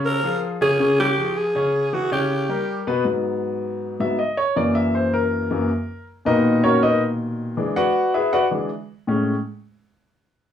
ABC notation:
X:1
M:4/4
L:1/8
Q:1/4=159
K:G#m
V:1 name="Alto saxophone"
A2 z G2 =G2 ^G- | G2 F =G4 z | z8 | z8 |
z8 | z8 | z8 |]
V:2 name="Grand piano"
[C,Cc] [^E,^EG]2 [C,Cc] [C,Cc]2 [E,EG]2 | [C,Cc]2 [E,EG] [C,Cc]2 [=G,=G_B]2 [=B,,B,=B] | z4 z e d c | =d e ^B A4- A |
z [DABd]2 [CFAc] [DABd] z3 | z [FB=df]2 [EGBe] [FBdf] z3 | z8 |]
V:3 name="Grand piano" clef=bass
z8 | z8 | [G,,F,B,]4- [G,,F,B,] [G,,F,B,] z2 | [F,,E,A,]4- [F,,E,A,] [F,,E,A,] z2 |
z [A,,B,,D,]6- [A,,B,,D,] | [E,G,=D] z4 [E,G,D] z2 | [=A,,G,C] z6 z |]